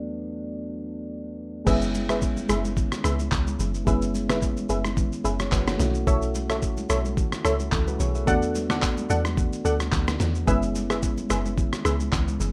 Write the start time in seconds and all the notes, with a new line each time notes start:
Already playing: E2 F#3 A3 B3 D4
1.65 F#1 G#3 B3 C#4 E4 G#4 B4 E5, kick, crash, low conga, shaker
1.82 shaker
1.94 high conga, shaker
2.09 G#4 B4 E5, cross-stick, shaker
2.22 kick, shaker
2.37 high conga, shaker
2.49 F#1 G#4 B4 E5, cross-stick, high conga, shaker
2.65 high conga, shaker
2.77 kick, low conga, shaker
2.92 cross-stick, shaker
3.04 C#2 G#4 B4 E5, cross-stick, shaker
3.19 high conga, shaker
3.32 C#2, kick, clap, low conga, shaker
3.47 high conga, shaker
3.59 F#1, low conga, shaker
3.74 shaker
3.85 F#1 G#3 B3 C#4 E4 G#4 B4 E5, kick, low conga, shaker
4.02 shaker
4.15 high conga, shaker
4.29 G#4 B4 E5, cross-stick, snare, shaker
4.42 kick, shaker
4.57 high conga, shaker
4.69 F#1 G#4 B4 E5, high conga, shaker
4.85 cross-stick, high conga, shaker
4.97 kick, low conga, shaker
5.12 shaker
5.24 F#1 C#4 G#4 B4 E5, shaker
5.39 G#4 C#5, cross-stick, high conga, shaker
5.52 F#1 F#4 B4, kick, clap, low conga, shaker
5.67 C#4 F#4, cross-stick, snare, high conga, shaker
5.78 B1 A3 C#4 E4 F#4, snare, low conga, shaker
5.94 shaker
6.07 B1 A4 C#5 E5, kick, low conga, shaker
6.22 shaker
6.35 high conga, shaker
6.50 A4 C#5 E5, cross-stick, shaker
6.62 kick, shaker
6.77 high conga, shaker
6.89 B1 A4 C#5 E5, cross-stick, high conga, shaker
7.05 high conga, shaker
7.17 kick, low conga, shaker
7.32 cross-stick, shaker
7.45 C#2 A4 C#5 E5, cross-stick, shaker
7.60 high conga, shaker
7.72 C#2 E4 A4, kick, clap, low conga, shaker
7.87 F#4 B4, high conga, shaker
8.00 B1 G#4 C#5, low conga, shaker
8.15 B4 E5, shaker
8.25 E2 A3 B3 D4 F#4 A4 D5 F#5, kick, low conga, shaker
8.42 shaker
8.55 high conga, shaker
8.70 A4 D5 F#5, cross-stick, snare, shaker
8.82 kick, clap, shaker
8.97 high conga, shaker
9.10 E2 A4 D5 F#5, high conga, shaker
9.25 cross-stick, high conga, shaker
9.37 kick, low conga, shaker
9.53 shaker
9.65 D2 A4 D5 F#5, high conga, shaker
9.80 cross-stick, high conga, shaker
9.92 D2, kick, clap, low conga, shaker
10.08 cross-stick, snare, high conga, shaker
10.20 E2, snare, low conga, shaker
10.35 shaker
10.46 F#1 G#3 B3 C#4 E4 G#4 B4 E5, kick, low conga, shaker
10.62 shaker
10.75 high conga, shaker
10.90 G#4 B4 E5, cross-stick, shaker
11.02 kick, shaker
11.17 high conga, shaker
11.30 F#1 G#4 B4 E5, cross-stick, high conga, shaker
11.45 high conga, shaker
11.58 kick, low conga, shaker
11.73 cross-stick, shaker
11.85 C#2 G#4 B4 E5, cross-stick, shaker
12.00 high conga, shaker
12.12 C#2, kick, clap, low conga, shaker
12.28 high conga, shaker
12.40 F#1, low conga, shaker